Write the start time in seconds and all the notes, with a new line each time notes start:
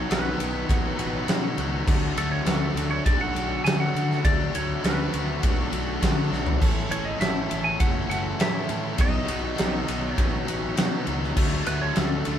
Already playing: D#4 F#4 B4 C#5
0.08 B1 B2 D#3 F#3 B3 D#4 F#4 B4, snare, ride
0.39 B1 B2 D#3 F#3 B3 D#4 F#4, ride
0.68 A1 B2 D#3 F#3 B3 D#4 F#4, kick, ride
0.96 A1 B2 D#3 F#3 B3 D#4 F#4, ride
1.26 B2 D#3 F#3 B3 D#4 F#4, snare, ride
1.56 C#2 B2 D#3 F#3 B3 D#4 F#4, ride
1.86 D2 D3 F#3 A3 D4 F#4 A4 D5, kick, crash
2.17 D2 D3 F#3 A3 D4 F#4 A4, ride
2.32 C#4 C#5
2.45 D2 D3 F#3 A3 D4 F#4 A4, snare, ride
2.74 D2 D3 F#3 A3 D4 F#4, ride
2.90 C#4 C#5
3.04 B1 D3 F#3 A3 D4 F#4 D5, kick, ride
3.19 F#4 F#5
3.33 B1 D3 F#3 A3 D4 F#4, ride
3.64 D3 F#3 A3 D4 F#4 G#4 G#5, snare, ride
3.80 F#4 F#5
3.93 D3 F#3 A3 D4 F#4, ride
4.11 snare
4.23 D2 D3 F#3 A3 D4 F#4 A4 D5, kick, ride
4.53 D2 D3 F#3 A3 C#4 D4 F#4 C#5, ride
4.82 D2 D3 F#3 A3 B3 D4 F#4 B4, snare, ride
5.12 D2 D3 F#3 A3 D4 F#4, ride
5.41 B1 D3 F#3 A3 D4 F#4, kick, ride
5.63 A3 A4
5.71 B1 D3 F#3 A3 D4 F#4, ride
6.00 D3 F#3 A3 D4 F#4, kick, ride
6.04 snare
6.30 B1 D3 F#3 A3 D4 F#4, snare
6.47 floor tom
6.59 A1 A2 E3 A3 C#4 E4 A4 C#5, kick, crash
6.88 A1 A2 E3 A3 C#4 E4 A4 C#5, ride
7.05 D#4 D#5
7.18 A1 A2 E3 A3 C#4 E4 A4 E5, ride
7.22 snare
7.48 A1 A2 E3 A3 C#4 E4 A4, ride
7.64 G#4 G#5
7.79 F#1 A2 E3 A3 C#4 E4 F#4 A4 F#5, kick, ride
8.07 F#1 A2 E3 A3 C#4 A4 F#5
8.11 E4 F#4, ride
8.38 A2 E3 A3 C#4 E4 A4 E5, snare, ride
8.42 E4
8.67 A2 E3 A3 C#4 E4 A4, ride
8.96 B1 B2 F#3 B3 C#4 D#4 F#4 B4, kick, ride
9.01 D#5
9.25 B1 B2 F#3 B3 D#4 F#4, ride
9.55 B2 F#3 B3 D#4 F#4, ride
9.59 B1, snare
9.86 B1 B2 F#3 B3 D#4 F#4, ride
10.13 B2 F#3 B3 C#4 D#4 F#4 C#5
10.18 A1, kick, ride
10.46 A1 B2 F#3 B3 D#4 F#4, ride
10.76 B2 F#3 B3 D#4 F#4, snare, ride
11.05 C#2 B2 F#3 B3 D#4 F#4, ride
11.24 snare
11.36 D2 D3 F#3 A3 D4 F#4 A4, kick, crash
11.64 D2 D3 F#3 A3 B3 D4 F#4 B4, ride
11.79 C#4 C#5
11.95 D2 D3 F#3 A3 D4 F#4 A4, snare, ride
12.24 D2 D3 F#3 A3 D4 F#4, ride